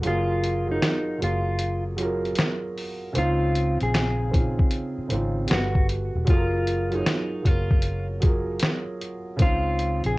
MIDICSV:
0, 0, Header, 1, 6, 480
1, 0, Start_track
1, 0, Tempo, 779221
1, 26, Time_signature, 4, 2, 24, 8
1, 6273, End_track
2, 0, Start_track
2, 0, Title_t, "Clean electric guitar"
2, 0, Program_c, 0, 27
2, 45, Note_on_c, 0, 65, 100
2, 410, Note_off_c, 0, 65, 0
2, 440, Note_on_c, 0, 63, 68
2, 735, Note_off_c, 0, 63, 0
2, 762, Note_on_c, 0, 65, 70
2, 1129, Note_off_c, 0, 65, 0
2, 1960, Note_on_c, 0, 65, 99
2, 2327, Note_off_c, 0, 65, 0
2, 2359, Note_on_c, 0, 68, 74
2, 3369, Note_off_c, 0, 68, 0
2, 3406, Note_on_c, 0, 66, 75
2, 3613, Note_off_c, 0, 66, 0
2, 3880, Note_on_c, 0, 65, 95
2, 4280, Note_off_c, 0, 65, 0
2, 4280, Note_on_c, 0, 63, 69
2, 4601, Note_off_c, 0, 63, 0
2, 4601, Note_on_c, 0, 65, 73
2, 4968, Note_off_c, 0, 65, 0
2, 5802, Note_on_c, 0, 65, 104
2, 6168, Note_off_c, 0, 65, 0
2, 6198, Note_on_c, 0, 68, 77
2, 6273, Note_off_c, 0, 68, 0
2, 6273, End_track
3, 0, Start_track
3, 0, Title_t, "Felt piano"
3, 0, Program_c, 1, 0
3, 0, Control_c, 1, 64, 127
3, 11, Note_on_c, 1, 54, 84
3, 19, Note_on_c, 1, 65, 89
3, 33, Note_on_c, 1, 68, 96
3, 35, Control_c, 1, 64, 0
3, 46, Note_on_c, 1, 70, 98
3, 159, Control_c, 1, 64, 127
3, 390, Note_off_c, 1, 54, 0
3, 394, Note_off_c, 1, 65, 0
3, 401, Note_off_c, 1, 68, 0
3, 407, Note_off_c, 1, 70, 0
3, 411, Note_on_c, 1, 54, 73
3, 423, Note_on_c, 1, 65, 65
3, 434, Note_on_c, 1, 68, 64
3, 447, Note_on_c, 1, 70, 81
3, 718, Note_off_c, 1, 54, 0
3, 727, Note_on_c, 1, 54, 74
3, 729, Note_off_c, 1, 65, 0
3, 737, Note_off_c, 1, 68, 0
3, 738, Note_on_c, 1, 65, 66
3, 743, Note_off_c, 1, 70, 0
3, 750, Note_on_c, 1, 68, 64
3, 762, Note_on_c, 1, 70, 67
3, 1198, Note_off_c, 1, 54, 0
3, 1204, Note_off_c, 1, 65, 0
3, 1209, Note_off_c, 1, 68, 0
3, 1211, Note_on_c, 1, 54, 84
3, 1215, Note_off_c, 1, 70, 0
3, 1223, Note_on_c, 1, 65, 78
3, 1234, Note_on_c, 1, 68, 68
3, 1246, Note_on_c, 1, 70, 99
3, 1911, Note_off_c, 1, 54, 0
3, 1917, Note_off_c, 1, 65, 0
3, 1922, Note_off_c, 1, 68, 0
3, 1927, Note_on_c, 1, 49, 93
3, 1928, Note_off_c, 1, 70, 0
3, 1938, Note_on_c, 1, 60, 86
3, 1949, Note_on_c, 1, 63, 87
3, 1954, Control_c, 1, 64, 0
3, 1961, Note_on_c, 1, 65, 99
3, 2073, Control_c, 1, 64, 127
3, 2629, Note_off_c, 1, 49, 0
3, 2634, Note_off_c, 1, 60, 0
3, 2640, Note_off_c, 1, 63, 0
3, 2645, Note_off_c, 1, 65, 0
3, 2647, Note_on_c, 1, 49, 70
3, 2656, Note_on_c, 1, 60, 62
3, 2669, Note_on_c, 1, 63, 63
3, 2678, Note_on_c, 1, 65, 79
3, 3118, Note_off_c, 1, 49, 0
3, 3123, Note_off_c, 1, 60, 0
3, 3128, Note_on_c, 1, 49, 74
3, 3129, Note_off_c, 1, 63, 0
3, 3134, Note_off_c, 1, 65, 0
3, 3138, Note_on_c, 1, 60, 71
3, 3150, Note_on_c, 1, 63, 71
3, 3162, Note_on_c, 1, 65, 85
3, 3368, Note_on_c, 1, 55, 78
3, 3377, Note_off_c, 1, 49, 0
3, 3379, Note_on_c, 1, 66, 71
3, 3382, Note_off_c, 1, 60, 0
3, 3388, Note_off_c, 1, 63, 0
3, 3393, Control_c, 1, 64, 0
3, 3393, Note_on_c, 1, 69, 68
3, 3394, Note_off_c, 1, 65, 0
3, 3402, Note_on_c, 1, 71, 83
3, 3485, Control_c, 1, 64, 127
3, 3839, Note_off_c, 1, 55, 0
3, 3844, Note_off_c, 1, 66, 0
3, 3848, Note_on_c, 1, 54, 88
3, 3851, Note_off_c, 1, 69, 0
3, 3855, Note_off_c, 1, 71, 0
3, 3858, Note_on_c, 1, 65, 87
3, 3869, Note_on_c, 1, 68, 87
3, 3874, Control_c, 1, 64, 0
3, 3883, Note_on_c, 1, 69, 87
3, 3919, Note_on_c, 1, 70, 112
3, 3927, Note_off_c, 1, 69, 0
3, 3984, Control_c, 1, 64, 127
3, 4228, Note_off_c, 1, 54, 0
3, 4233, Note_off_c, 1, 65, 0
3, 4239, Note_off_c, 1, 68, 0
3, 4249, Note_on_c, 1, 54, 75
3, 4261, Note_on_c, 1, 65, 67
3, 4264, Note_off_c, 1, 70, 0
3, 4273, Note_on_c, 1, 68, 72
3, 4285, Note_on_c, 1, 73, 80
3, 4563, Note_off_c, 1, 54, 0
3, 4571, Note_off_c, 1, 65, 0
3, 4572, Note_on_c, 1, 54, 60
3, 4576, Note_off_c, 1, 68, 0
3, 4582, Note_on_c, 1, 65, 68
3, 4583, Note_off_c, 1, 73, 0
3, 4595, Note_on_c, 1, 68, 55
3, 4606, Note_on_c, 1, 70, 77
3, 5040, Note_off_c, 1, 54, 0
3, 5046, Note_off_c, 1, 65, 0
3, 5052, Note_off_c, 1, 68, 0
3, 5052, Note_on_c, 1, 54, 86
3, 5057, Note_off_c, 1, 70, 0
3, 5062, Note_on_c, 1, 65, 76
3, 5073, Note_on_c, 1, 68, 81
3, 5086, Note_on_c, 1, 70, 88
3, 5751, Note_off_c, 1, 54, 0
3, 5756, Note_off_c, 1, 65, 0
3, 5762, Note_off_c, 1, 68, 0
3, 5768, Note_off_c, 1, 70, 0
3, 5769, Note_on_c, 1, 49, 98
3, 5780, Note_on_c, 1, 60, 85
3, 5791, Note_on_c, 1, 63, 85
3, 5794, Control_c, 1, 64, 0
3, 5804, Note_on_c, 1, 65, 113
3, 5898, Control_c, 1, 64, 127
3, 6273, Note_off_c, 1, 49, 0
3, 6273, Note_off_c, 1, 60, 0
3, 6273, Note_off_c, 1, 63, 0
3, 6273, Note_off_c, 1, 65, 0
3, 6273, End_track
4, 0, Start_track
4, 0, Title_t, "Fingered electric bass"
4, 0, Program_c, 2, 33
4, 34, Note_on_c, 2, 30, 99
4, 485, Note_off_c, 2, 30, 0
4, 754, Note_on_c, 2, 30, 91
4, 1445, Note_off_c, 2, 30, 0
4, 1950, Note_on_c, 2, 37, 110
4, 2322, Note_off_c, 2, 37, 0
4, 2349, Note_on_c, 2, 34, 86
4, 2802, Note_off_c, 2, 34, 0
4, 3151, Note_on_c, 2, 32, 83
4, 3374, Note_off_c, 2, 32, 0
4, 3393, Note_on_c, 2, 31, 98
4, 3764, Note_off_c, 2, 31, 0
4, 3790, Note_on_c, 2, 28, 91
4, 3864, Note_off_c, 2, 28, 0
4, 3872, Note_on_c, 2, 30, 106
4, 4324, Note_off_c, 2, 30, 0
4, 4595, Note_on_c, 2, 30, 94
4, 5286, Note_off_c, 2, 30, 0
4, 5793, Note_on_c, 2, 37, 117
4, 6164, Note_off_c, 2, 37, 0
4, 6192, Note_on_c, 2, 34, 89
4, 6273, Note_off_c, 2, 34, 0
4, 6273, End_track
5, 0, Start_track
5, 0, Title_t, "Muted fingered electric bass strokes"
5, 3068, Note_on_c, 9, 29, 43
5, 3130, Note_off_c, 9, 29, 0
5, 6273, End_track
6, 0, Start_track
6, 0, Title_t, "Drums"
6, 21, Note_on_c, 9, 42, 75
6, 82, Note_off_c, 9, 42, 0
6, 269, Note_on_c, 9, 42, 62
6, 330, Note_off_c, 9, 42, 0
6, 507, Note_on_c, 9, 38, 103
6, 509, Note_on_c, 9, 42, 75
6, 512, Note_on_c, 9, 26, 69
6, 569, Note_off_c, 9, 38, 0
6, 570, Note_off_c, 9, 42, 0
6, 574, Note_off_c, 9, 26, 0
6, 753, Note_on_c, 9, 42, 67
6, 815, Note_off_c, 9, 42, 0
6, 978, Note_on_c, 9, 42, 74
6, 1040, Note_off_c, 9, 42, 0
6, 1220, Note_on_c, 9, 42, 81
6, 1282, Note_off_c, 9, 42, 0
6, 1388, Note_on_c, 9, 42, 33
6, 1450, Note_off_c, 9, 42, 0
6, 1451, Note_on_c, 9, 42, 80
6, 1471, Note_on_c, 9, 38, 116
6, 1478, Note_on_c, 9, 26, 69
6, 1513, Note_off_c, 9, 42, 0
6, 1532, Note_off_c, 9, 38, 0
6, 1540, Note_off_c, 9, 26, 0
6, 1710, Note_on_c, 9, 46, 46
6, 1771, Note_off_c, 9, 46, 0
6, 1941, Note_on_c, 9, 42, 79
6, 2002, Note_off_c, 9, 42, 0
6, 2189, Note_on_c, 9, 42, 61
6, 2250, Note_off_c, 9, 42, 0
6, 2344, Note_on_c, 9, 42, 36
6, 2405, Note_off_c, 9, 42, 0
6, 2429, Note_on_c, 9, 26, 65
6, 2431, Note_on_c, 9, 38, 105
6, 2432, Note_on_c, 9, 42, 77
6, 2490, Note_off_c, 9, 26, 0
6, 2492, Note_off_c, 9, 38, 0
6, 2494, Note_off_c, 9, 42, 0
6, 2671, Note_on_c, 9, 36, 86
6, 2674, Note_on_c, 9, 42, 71
6, 2732, Note_off_c, 9, 36, 0
6, 2735, Note_off_c, 9, 42, 0
6, 2828, Note_on_c, 9, 36, 94
6, 2890, Note_off_c, 9, 36, 0
6, 2900, Note_on_c, 9, 42, 71
6, 2961, Note_off_c, 9, 42, 0
6, 3142, Note_on_c, 9, 42, 79
6, 3203, Note_off_c, 9, 42, 0
6, 3374, Note_on_c, 9, 42, 78
6, 3393, Note_on_c, 9, 38, 111
6, 3395, Note_on_c, 9, 26, 64
6, 3435, Note_off_c, 9, 42, 0
6, 3455, Note_off_c, 9, 38, 0
6, 3457, Note_off_c, 9, 26, 0
6, 3542, Note_on_c, 9, 36, 92
6, 3604, Note_off_c, 9, 36, 0
6, 3629, Note_on_c, 9, 42, 63
6, 3690, Note_off_c, 9, 42, 0
6, 3862, Note_on_c, 9, 42, 79
6, 3867, Note_on_c, 9, 36, 117
6, 3924, Note_off_c, 9, 42, 0
6, 3928, Note_off_c, 9, 36, 0
6, 4109, Note_on_c, 9, 42, 63
6, 4171, Note_off_c, 9, 42, 0
6, 4261, Note_on_c, 9, 42, 35
6, 4323, Note_off_c, 9, 42, 0
6, 4351, Note_on_c, 9, 38, 114
6, 4352, Note_on_c, 9, 42, 77
6, 4353, Note_on_c, 9, 26, 70
6, 4412, Note_off_c, 9, 38, 0
6, 4414, Note_off_c, 9, 42, 0
6, 4415, Note_off_c, 9, 26, 0
6, 4591, Note_on_c, 9, 36, 85
6, 4593, Note_on_c, 9, 42, 69
6, 4652, Note_off_c, 9, 36, 0
6, 4655, Note_off_c, 9, 42, 0
6, 4748, Note_on_c, 9, 36, 95
6, 4809, Note_off_c, 9, 36, 0
6, 4817, Note_on_c, 9, 42, 72
6, 4879, Note_off_c, 9, 42, 0
6, 5063, Note_on_c, 9, 42, 80
6, 5071, Note_on_c, 9, 36, 94
6, 5124, Note_off_c, 9, 42, 0
6, 5132, Note_off_c, 9, 36, 0
6, 5295, Note_on_c, 9, 42, 86
6, 5315, Note_on_c, 9, 38, 110
6, 5318, Note_on_c, 9, 26, 70
6, 5357, Note_off_c, 9, 42, 0
6, 5376, Note_off_c, 9, 38, 0
6, 5380, Note_off_c, 9, 26, 0
6, 5553, Note_on_c, 9, 42, 66
6, 5615, Note_off_c, 9, 42, 0
6, 5785, Note_on_c, 9, 42, 78
6, 5789, Note_on_c, 9, 36, 120
6, 5846, Note_off_c, 9, 42, 0
6, 5850, Note_off_c, 9, 36, 0
6, 6030, Note_on_c, 9, 42, 61
6, 6092, Note_off_c, 9, 42, 0
6, 6184, Note_on_c, 9, 42, 34
6, 6245, Note_off_c, 9, 42, 0
6, 6273, End_track
0, 0, End_of_file